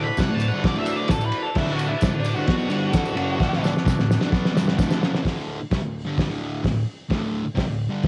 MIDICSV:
0, 0, Header, 1, 6, 480
1, 0, Start_track
1, 0, Tempo, 461538
1, 1622, Time_signature, 4, 2, 24, 8
1, 8399, End_track
2, 0, Start_track
2, 0, Title_t, "Lead electric guitar"
2, 0, Program_c, 0, 29
2, 42, Note_on_c, 0, 83, 89
2, 188, Note_on_c, 0, 78, 96
2, 192, Note_off_c, 0, 83, 0
2, 360, Note_off_c, 0, 78, 0
2, 360, Note_on_c, 0, 81, 99
2, 501, Note_off_c, 0, 81, 0
2, 501, Note_on_c, 0, 78, 88
2, 659, Note_off_c, 0, 78, 0
2, 677, Note_on_c, 0, 74, 105
2, 813, Note_off_c, 0, 74, 0
2, 817, Note_on_c, 0, 76, 94
2, 1000, Note_off_c, 0, 76, 0
2, 1000, Note_on_c, 0, 74, 109
2, 1148, Note_off_c, 0, 74, 0
2, 1149, Note_on_c, 0, 69, 106
2, 1301, Note_off_c, 0, 69, 0
2, 1305, Note_on_c, 0, 71, 90
2, 1482, Note_off_c, 0, 71, 0
2, 1482, Note_on_c, 0, 69, 95
2, 1627, Note_off_c, 0, 69, 0
2, 1631, Note_on_c, 0, 64, 104
2, 1800, Note_off_c, 0, 64, 0
2, 1800, Note_on_c, 0, 66, 91
2, 1945, Note_off_c, 0, 66, 0
2, 1952, Note_on_c, 0, 64, 93
2, 2101, Note_off_c, 0, 64, 0
2, 2284, Note_on_c, 0, 62, 107
2, 2427, Note_off_c, 0, 62, 0
2, 2439, Note_on_c, 0, 66, 97
2, 3822, Note_off_c, 0, 66, 0
2, 8399, End_track
3, 0, Start_track
3, 0, Title_t, "Transistor combo organ"
3, 0, Program_c, 1, 18
3, 0, Note_on_c, 1, 66, 67
3, 0, Note_on_c, 1, 69, 56
3, 0, Note_on_c, 1, 74, 75
3, 1567, Note_off_c, 1, 66, 0
3, 1568, Note_off_c, 1, 74, 0
3, 1569, Note_off_c, 1, 69, 0
3, 1637, Note_on_c, 1, 66, 69
3, 1639, Note_on_c, 1, 74, 74
3, 1644, Note_on_c, 1, 69, 65
3, 5421, Note_off_c, 1, 66, 0
3, 5422, Note_off_c, 1, 74, 0
3, 5425, Note_off_c, 1, 69, 0
3, 8399, End_track
4, 0, Start_track
4, 0, Title_t, "Distorted electric guitar"
4, 0, Program_c, 2, 30
4, 182, Note_on_c, 2, 48, 86
4, 194, Note_on_c, 2, 55, 91
4, 299, Note_off_c, 2, 48, 0
4, 305, Note_off_c, 2, 55, 0
4, 311, Note_on_c, 2, 38, 63
4, 316, Note_on_c, 2, 45, 80
4, 502, Note_off_c, 2, 38, 0
4, 504, Note_off_c, 2, 45, 0
4, 554, Note_on_c, 2, 43, 96
4, 563, Note_on_c, 2, 50, 109
4, 569, Note_on_c, 2, 55, 106
4, 783, Note_off_c, 2, 43, 0
4, 787, Note_off_c, 2, 50, 0
4, 790, Note_off_c, 2, 55, 0
4, 793, Note_on_c, 2, 38, 106
4, 794, Note_on_c, 2, 45, 100
4, 808, Note_on_c, 2, 50, 105
4, 1129, Note_off_c, 2, 38, 0
4, 1141, Note_on_c, 2, 38, 64
4, 1142, Note_off_c, 2, 45, 0
4, 1148, Note_off_c, 2, 50, 0
4, 1154, Note_on_c, 2, 45, 82
4, 1334, Note_off_c, 2, 38, 0
4, 1340, Note_off_c, 2, 45, 0
4, 1623, Note_on_c, 2, 38, 92
4, 1638, Note_on_c, 2, 45, 109
4, 1638, Note_on_c, 2, 50, 118
4, 1974, Note_off_c, 2, 38, 0
4, 1981, Note_off_c, 2, 45, 0
4, 1981, Note_off_c, 2, 50, 0
4, 2106, Note_on_c, 2, 48, 96
4, 2112, Note_on_c, 2, 55, 105
4, 2215, Note_off_c, 2, 48, 0
4, 2218, Note_off_c, 2, 55, 0
4, 2222, Note_on_c, 2, 38, 68
4, 2228, Note_on_c, 2, 45, 84
4, 2412, Note_off_c, 2, 38, 0
4, 2415, Note_off_c, 2, 45, 0
4, 2461, Note_on_c, 2, 43, 99
4, 2471, Note_on_c, 2, 50, 108
4, 2569, Note_off_c, 2, 43, 0
4, 2573, Note_on_c, 2, 47, 99
4, 2576, Note_off_c, 2, 50, 0
4, 2580, Note_on_c, 2, 54, 111
4, 2594, Note_on_c, 2, 59, 108
4, 2796, Note_off_c, 2, 47, 0
4, 2800, Note_on_c, 2, 43, 92
4, 2803, Note_off_c, 2, 54, 0
4, 2807, Note_on_c, 2, 50, 104
4, 2811, Note_off_c, 2, 59, 0
4, 2815, Note_on_c, 2, 55, 107
4, 3039, Note_off_c, 2, 43, 0
4, 3043, Note_on_c, 2, 38, 96
4, 3044, Note_off_c, 2, 50, 0
4, 3048, Note_off_c, 2, 55, 0
4, 3053, Note_on_c, 2, 45, 108
4, 3068, Note_on_c, 2, 50, 118
4, 3275, Note_off_c, 2, 38, 0
4, 3279, Note_on_c, 2, 42, 106
4, 3286, Note_off_c, 2, 45, 0
4, 3291, Note_on_c, 2, 49, 98
4, 3294, Note_off_c, 2, 50, 0
4, 3298, Note_on_c, 2, 54, 104
4, 3519, Note_off_c, 2, 42, 0
4, 3525, Note_off_c, 2, 49, 0
4, 3529, Note_off_c, 2, 54, 0
4, 3530, Note_on_c, 2, 38, 94
4, 3538, Note_on_c, 2, 45, 107
4, 3546, Note_on_c, 2, 50, 124
4, 3876, Note_off_c, 2, 38, 0
4, 3888, Note_off_c, 2, 45, 0
4, 3892, Note_off_c, 2, 50, 0
4, 4003, Note_on_c, 2, 48, 95
4, 4015, Note_on_c, 2, 55, 97
4, 4121, Note_off_c, 2, 48, 0
4, 4127, Note_off_c, 2, 55, 0
4, 4128, Note_on_c, 2, 38, 77
4, 4131, Note_on_c, 2, 45, 78
4, 4323, Note_off_c, 2, 38, 0
4, 4324, Note_off_c, 2, 45, 0
4, 4363, Note_on_c, 2, 43, 93
4, 4375, Note_on_c, 2, 50, 116
4, 4481, Note_off_c, 2, 43, 0
4, 4485, Note_on_c, 2, 47, 93
4, 4487, Note_off_c, 2, 50, 0
4, 4493, Note_on_c, 2, 54, 102
4, 4509, Note_on_c, 2, 59, 100
4, 4713, Note_off_c, 2, 47, 0
4, 4717, Note_on_c, 2, 43, 97
4, 4725, Note_off_c, 2, 54, 0
4, 4728, Note_off_c, 2, 59, 0
4, 4729, Note_on_c, 2, 50, 103
4, 4732, Note_on_c, 2, 55, 111
4, 4958, Note_off_c, 2, 43, 0
4, 4964, Note_off_c, 2, 50, 0
4, 4966, Note_off_c, 2, 55, 0
4, 4970, Note_on_c, 2, 38, 112
4, 4979, Note_on_c, 2, 45, 113
4, 4986, Note_on_c, 2, 50, 109
4, 5205, Note_off_c, 2, 38, 0
4, 5210, Note_off_c, 2, 45, 0
4, 5214, Note_off_c, 2, 50, 0
4, 5214, Note_on_c, 2, 42, 95
4, 5225, Note_on_c, 2, 49, 100
4, 5229, Note_on_c, 2, 54, 106
4, 5448, Note_off_c, 2, 42, 0
4, 5452, Note_on_c, 2, 38, 84
4, 5453, Note_off_c, 2, 49, 0
4, 5455, Note_off_c, 2, 54, 0
4, 5457, Note_on_c, 2, 45, 92
4, 5471, Note_on_c, 2, 50, 89
4, 5808, Note_off_c, 2, 38, 0
4, 5810, Note_off_c, 2, 45, 0
4, 5817, Note_off_c, 2, 50, 0
4, 5936, Note_on_c, 2, 48, 84
4, 5940, Note_on_c, 2, 55, 86
4, 6048, Note_off_c, 2, 48, 0
4, 6050, Note_off_c, 2, 55, 0
4, 6052, Note_on_c, 2, 38, 65
4, 6054, Note_on_c, 2, 45, 65
4, 6248, Note_off_c, 2, 38, 0
4, 6249, Note_off_c, 2, 45, 0
4, 6289, Note_on_c, 2, 43, 89
4, 6306, Note_on_c, 2, 50, 96
4, 6308, Note_on_c, 2, 55, 98
4, 6528, Note_off_c, 2, 43, 0
4, 6533, Note_on_c, 2, 38, 82
4, 6534, Note_off_c, 2, 50, 0
4, 6538, Note_off_c, 2, 55, 0
4, 6542, Note_on_c, 2, 45, 89
4, 6546, Note_on_c, 2, 50, 96
4, 6885, Note_off_c, 2, 38, 0
4, 6891, Note_off_c, 2, 45, 0
4, 6897, Note_on_c, 2, 38, 64
4, 6899, Note_off_c, 2, 50, 0
4, 6904, Note_on_c, 2, 45, 70
4, 7094, Note_off_c, 2, 38, 0
4, 7097, Note_off_c, 2, 45, 0
4, 7374, Note_on_c, 2, 38, 103
4, 7383, Note_on_c, 2, 45, 94
4, 7392, Note_on_c, 2, 50, 97
4, 7730, Note_off_c, 2, 38, 0
4, 7741, Note_off_c, 2, 45, 0
4, 7745, Note_off_c, 2, 50, 0
4, 7849, Note_on_c, 2, 48, 76
4, 7862, Note_on_c, 2, 55, 80
4, 7972, Note_off_c, 2, 55, 0
4, 7973, Note_off_c, 2, 48, 0
4, 7976, Note_on_c, 2, 45, 65
4, 7978, Note_on_c, 2, 38, 66
4, 8177, Note_off_c, 2, 45, 0
4, 8178, Note_off_c, 2, 38, 0
4, 8206, Note_on_c, 2, 43, 83
4, 8219, Note_on_c, 2, 50, 105
4, 8227, Note_on_c, 2, 55, 99
4, 8399, Note_off_c, 2, 43, 0
4, 8399, Note_off_c, 2, 50, 0
4, 8399, Note_off_c, 2, 55, 0
4, 8399, End_track
5, 0, Start_track
5, 0, Title_t, "Muted distorted electric guitar strokes"
5, 67, Note_on_c, 9, 29, 55
5, 171, Note_off_c, 9, 29, 0
5, 1989, Note_on_c, 9, 29, 59
5, 2093, Note_off_c, 9, 29, 0
5, 3889, Note_on_c, 9, 29, 64
5, 3993, Note_off_c, 9, 29, 0
5, 5829, Note_on_c, 9, 29, 53
5, 5933, Note_off_c, 9, 29, 0
5, 7743, Note_on_c, 9, 29, 54
5, 7847, Note_off_c, 9, 29, 0
5, 8399, End_track
6, 0, Start_track
6, 0, Title_t, "Drums"
6, 177, Note_on_c, 9, 54, 93
6, 193, Note_on_c, 9, 36, 112
6, 197, Note_on_c, 9, 51, 113
6, 211, Note_on_c, 9, 38, 118
6, 281, Note_off_c, 9, 54, 0
6, 297, Note_off_c, 9, 36, 0
6, 301, Note_off_c, 9, 51, 0
6, 315, Note_off_c, 9, 38, 0
6, 414, Note_on_c, 9, 54, 85
6, 431, Note_on_c, 9, 51, 75
6, 518, Note_off_c, 9, 54, 0
6, 534, Note_on_c, 9, 54, 31
6, 535, Note_off_c, 9, 51, 0
6, 638, Note_off_c, 9, 54, 0
6, 664, Note_on_c, 9, 51, 100
6, 665, Note_on_c, 9, 36, 123
6, 677, Note_on_c, 9, 38, 114
6, 768, Note_off_c, 9, 51, 0
6, 769, Note_off_c, 9, 36, 0
6, 781, Note_off_c, 9, 38, 0
6, 787, Note_on_c, 9, 54, 33
6, 891, Note_off_c, 9, 54, 0
6, 892, Note_on_c, 9, 51, 89
6, 898, Note_on_c, 9, 54, 80
6, 996, Note_off_c, 9, 51, 0
6, 1002, Note_off_c, 9, 54, 0
6, 1120, Note_on_c, 9, 51, 107
6, 1133, Note_on_c, 9, 38, 110
6, 1139, Note_on_c, 9, 36, 124
6, 1154, Note_on_c, 9, 54, 112
6, 1224, Note_off_c, 9, 51, 0
6, 1237, Note_off_c, 9, 38, 0
6, 1243, Note_off_c, 9, 36, 0
6, 1257, Note_off_c, 9, 54, 0
6, 1257, Note_on_c, 9, 54, 79
6, 1361, Note_off_c, 9, 54, 0
6, 1371, Note_on_c, 9, 51, 74
6, 1385, Note_on_c, 9, 54, 37
6, 1475, Note_off_c, 9, 51, 0
6, 1489, Note_off_c, 9, 54, 0
6, 1613, Note_on_c, 9, 49, 99
6, 1623, Note_on_c, 9, 36, 121
6, 1627, Note_on_c, 9, 38, 122
6, 1627, Note_on_c, 9, 54, 31
6, 1717, Note_off_c, 9, 49, 0
6, 1727, Note_off_c, 9, 36, 0
6, 1731, Note_off_c, 9, 38, 0
6, 1731, Note_off_c, 9, 54, 0
6, 1861, Note_on_c, 9, 54, 79
6, 1864, Note_on_c, 9, 51, 80
6, 1965, Note_off_c, 9, 54, 0
6, 1968, Note_off_c, 9, 51, 0
6, 2090, Note_on_c, 9, 54, 109
6, 2102, Note_on_c, 9, 51, 99
6, 2104, Note_on_c, 9, 36, 123
6, 2115, Note_on_c, 9, 38, 117
6, 2194, Note_off_c, 9, 54, 0
6, 2206, Note_off_c, 9, 51, 0
6, 2208, Note_off_c, 9, 36, 0
6, 2219, Note_off_c, 9, 38, 0
6, 2335, Note_on_c, 9, 54, 86
6, 2346, Note_on_c, 9, 51, 85
6, 2439, Note_off_c, 9, 54, 0
6, 2450, Note_off_c, 9, 51, 0
6, 2450, Note_on_c, 9, 54, 36
6, 2554, Note_off_c, 9, 54, 0
6, 2574, Note_on_c, 9, 51, 103
6, 2580, Note_on_c, 9, 36, 117
6, 2587, Note_on_c, 9, 38, 117
6, 2678, Note_off_c, 9, 51, 0
6, 2684, Note_off_c, 9, 36, 0
6, 2691, Note_off_c, 9, 38, 0
6, 2698, Note_on_c, 9, 54, 31
6, 2802, Note_off_c, 9, 54, 0
6, 2808, Note_on_c, 9, 54, 76
6, 2819, Note_on_c, 9, 51, 81
6, 2912, Note_off_c, 9, 54, 0
6, 2923, Note_off_c, 9, 51, 0
6, 3050, Note_on_c, 9, 51, 97
6, 3051, Note_on_c, 9, 54, 100
6, 3056, Note_on_c, 9, 36, 113
6, 3063, Note_on_c, 9, 38, 113
6, 3154, Note_off_c, 9, 51, 0
6, 3155, Note_off_c, 9, 54, 0
6, 3160, Note_off_c, 9, 36, 0
6, 3167, Note_off_c, 9, 38, 0
6, 3177, Note_on_c, 9, 54, 76
6, 3281, Note_off_c, 9, 54, 0
6, 3294, Note_on_c, 9, 51, 74
6, 3301, Note_on_c, 9, 54, 37
6, 3398, Note_off_c, 9, 51, 0
6, 3405, Note_off_c, 9, 54, 0
6, 3537, Note_on_c, 9, 36, 115
6, 3550, Note_on_c, 9, 54, 31
6, 3551, Note_on_c, 9, 38, 70
6, 3641, Note_off_c, 9, 36, 0
6, 3654, Note_off_c, 9, 54, 0
6, 3655, Note_off_c, 9, 38, 0
6, 3673, Note_on_c, 9, 38, 64
6, 3676, Note_on_c, 9, 54, 34
6, 3777, Note_off_c, 9, 38, 0
6, 3780, Note_off_c, 9, 54, 0
6, 3788, Note_on_c, 9, 54, 79
6, 3800, Note_on_c, 9, 38, 70
6, 3892, Note_off_c, 9, 54, 0
6, 3904, Note_off_c, 9, 38, 0
6, 3920, Note_on_c, 9, 38, 63
6, 4018, Note_on_c, 9, 36, 127
6, 4024, Note_off_c, 9, 38, 0
6, 4033, Note_on_c, 9, 38, 82
6, 4033, Note_on_c, 9, 54, 91
6, 4122, Note_off_c, 9, 36, 0
6, 4137, Note_off_c, 9, 38, 0
6, 4137, Note_off_c, 9, 54, 0
6, 4150, Note_on_c, 9, 38, 62
6, 4156, Note_on_c, 9, 54, 27
6, 4254, Note_off_c, 9, 38, 0
6, 4260, Note_off_c, 9, 54, 0
6, 4271, Note_on_c, 9, 38, 99
6, 4279, Note_on_c, 9, 54, 74
6, 4375, Note_off_c, 9, 38, 0
6, 4380, Note_on_c, 9, 38, 76
6, 4383, Note_off_c, 9, 54, 0
6, 4403, Note_on_c, 9, 54, 31
6, 4484, Note_off_c, 9, 38, 0
6, 4495, Note_on_c, 9, 36, 117
6, 4501, Note_on_c, 9, 38, 85
6, 4507, Note_off_c, 9, 54, 0
6, 4532, Note_on_c, 9, 54, 29
6, 4599, Note_off_c, 9, 36, 0
6, 4605, Note_off_c, 9, 38, 0
6, 4630, Note_on_c, 9, 38, 75
6, 4636, Note_off_c, 9, 54, 0
6, 4641, Note_on_c, 9, 54, 27
6, 4734, Note_off_c, 9, 38, 0
6, 4745, Note_off_c, 9, 54, 0
6, 4748, Note_on_c, 9, 38, 114
6, 4754, Note_on_c, 9, 54, 83
6, 4852, Note_off_c, 9, 38, 0
6, 4858, Note_off_c, 9, 54, 0
6, 4867, Note_on_c, 9, 38, 93
6, 4971, Note_off_c, 9, 38, 0
6, 4976, Note_on_c, 9, 36, 121
6, 4980, Note_on_c, 9, 54, 104
6, 4989, Note_on_c, 9, 38, 104
6, 5080, Note_off_c, 9, 36, 0
6, 5084, Note_off_c, 9, 54, 0
6, 5093, Note_off_c, 9, 38, 0
6, 5101, Note_on_c, 9, 54, 73
6, 5106, Note_on_c, 9, 38, 90
6, 5205, Note_off_c, 9, 54, 0
6, 5210, Note_off_c, 9, 38, 0
6, 5228, Note_on_c, 9, 54, 31
6, 5230, Note_on_c, 9, 38, 101
6, 5332, Note_off_c, 9, 54, 0
6, 5334, Note_off_c, 9, 38, 0
6, 5349, Note_on_c, 9, 54, 30
6, 5350, Note_on_c, 9, 38, 102
6, 5453, Note_off_c, 9, 54, 0
6, 5454, Note_off_c, 9, 38, 0
6, 5459, Note_on_c, 9, 36, 95
6, 5461, Note_on_c, 9, 46, 58
6, 5475, Note_on_c, 9, 38, 105
6, 5563, Note_off_c, 9, 36, 0
6, 5565, Note_off_c, 9, 46, 0
6, 5579, Note_off_c, 9, 38, 0
6, 5940, Note_on_c, 9, 46, 58
6, 5942, Note_on_c, 9, 36, 109
6, 5954, Note_on_c, 9, 38, 115
6, 6044, Note_off_c, 9, 46, 0
6, 6046, Note_off_c, 9, 36, 0
6, 6058, Note_off_c, 9, 38, 0
6, 6426, Note_on_c, 9, 36, 96
6, 6427, Note_on_c, 9, 46, 48
6, 6440, Note_on_c, 9, 38, 96
6, 6530, Note_off_c, 9, 36, 0
6, 6531, Note_off_c, 9, 46, 0
6, 6544, Note_off_c, 9, 38, 0
6, 6909, Note_on_c, 9, 36, 96
6, 6909, Note_on_c, 9, 46, 50
6, 6922, Note_on_c, 9, 38, 104
6, 7013, Note_off_c, 9, 36, 0
6, 7013, Note_off_c, 9, 46, 0
6, 7026, Note_off_c, 9, 38, 0
6, 7386, Note_on_c, 9, 46, 45
6, 7391, Note_on_c, 9, 36, 98
6, 7399, Note_on_c, 9, 38, 99
6, 7490, Note_off_c, 9, 46, 0
6, 7495, Note_off_c, 9, 36, 0
6, 7503, Note_off_c, 9, 38, 0
6, 7874, Note_on_c, 9, 46, 55
6, 7877, Note_on_c, 9, 36, 104
6, 7887, Note_on_c, 9, 38, 99
6, 7978, Note_off_c, 9, 46, 0
6, 7981, Note_off_c, 9, 36, 0
6, 7991, Note_off_c, 9, 38, 0
6, 8353, Note_on_c, 9, 46, 49
6, 8358, Note_on_c, 9, 36, 104
6, 8366, Note_on_c, 9, 38, 97
6, 8399, Note_off_c, 9, 36, 0
6, 8399, Note_off_c, 9, 38, 0
6, 8399, Note_off_c, 9, 46, 0
6, 8399, End_track
0, 0, End_of_file